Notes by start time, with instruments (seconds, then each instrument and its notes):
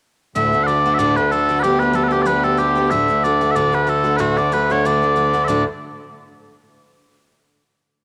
0.35 steel-string acoustic guitar D2 A2 D3 A3 D4 F#4, bagpipes D2 D3 E5
0.53 steel-string acoustic guitar D3 A3 D4 F#4
0.63 bagpipes D5 F#5
0.68 steel-string acoustic guitar D3 A3 D4 F#4
0.85 steel-string acoustic guitar D3 A3 D4 F#4
0.94 bagpipes E5
0.98 steel-string acoustic guitar D2 A2 D3 A3 D4 F#4, bagpipes D5
1.17 steel-string acoustic guitar D3 A3 D4 F#4, bagpipes B4
1.31 steel-string acoustic guitar D3 A3 D4 F#4, bagpipes A4
1.49 steel-string acoustic guitar D3 A3 D4 F#4
1.60 bagpipes G4 B4
1.64 steel-string acoustic guitar G3 B3 D4 G4
1.79 steel-string acoustic guitar B3 D4 G4, bagpipes B4
1.93 steel-string acoustic guitar G3 B3 D4 G4, bagpipes A4
2.03 bagpipes B4
2.08 steel-string acoustic guitar D4 G4, bagpipes A4
2.12 steel-string acoustic guitar B3, bagpipes G4
2.22 steel-string acoustic guitar G3 B3, bagpipes D5
2.27 steel-string acoustic guitar D4 G4, bagpipes B4
2.44 steel-string acoustic guitar B3 D4 G4, bagpipes A4
2.57 steel-string acoustic guitar G3 B3 D4 G4, bagpipes G4
2.76 steel-string acoustic guitar B3 D4 G4
2.91 steel-string acoustic guitar D2 A2 D3 A3 D4 F#4, bagpipes E5
3.08 steel-string acoustic guitar D3 A3 D4 F#4
3.24 steel-string acoustic guitar D3 A3 D4 F#4, bagpipes D5
3.41 steel-string acoustic guitar D3 A3 D4 F#4
3.51 bagpipes E5
3.55 steel-string acoustic guitar D2 A2 D3 A3 D4 F#4, bagpipes D5
3.72 steel-string acoustic guitar D3 A3 D4 F#4, bagpipes B4
3.87 steel-string acoustic guitar D3 A3 D4 F#4, bagpipes A4
4.04 steel-string acoustic guitar D3 A3 D4 F#4
4.16 steel-string acoustic guitar D2 A2 D3 A3 D4 F#4, bagpipes F#4 B4
4.37 steel-string acoustic guitar D3 A3 D4 F#4, bagpipes D5
4.52 steel-string acoustic guitar D3 A3 D4 F#4, bagpipes B4
4.70 steel-string acoustic guitar D3 A3 D4 F#4, bagpipes C#5
4.85 steel-string acoustic guitar D2 A2 D3 A3 D4 F#4, bagpipes D5
5.02 steel-string acoustic guitar D3 A3 D4 F#4
5.16 steel-string acoustic guitar D3 A3 D4 F#4
5.33 steel-string acoustic guitar D3 A3 D4 F#4
5.44 steel-string acoustic guitar D2 A2, bagpipes D5 E5
5.49 steel-string acoustic guitar D3 A3 D4 F#4